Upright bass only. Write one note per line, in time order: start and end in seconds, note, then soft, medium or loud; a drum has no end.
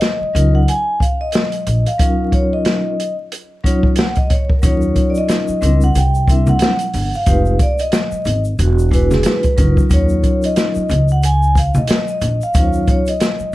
0.21 muted upright bass stroke soft
0.35 0.64 C#2 loud
1.67 1.84 A#1 medium
4.63 4.93 D#2 medium
5.48 muted upright bass stroke soft
5.62 5.92 C#2 medium
5.95 6.57 C2 medium
6.94 7.11 G1 medium
7.27 7.57 F1 loud
8.12 muted upright bass stroke soft
8.26 8.56 G#1 medium
8.59 9.21 E1 loud
9.58 9.75 F#1 medium
9.91 10.20 D#2 medium
10.76 muted upright bass stroke soft
10.90 11.71 C#2 medium
11.75 11.87 B1 medium
12.21 12.39 A#1 medium
12.55 12.84 D#2 medium
13.40 muted upright bass stroke soft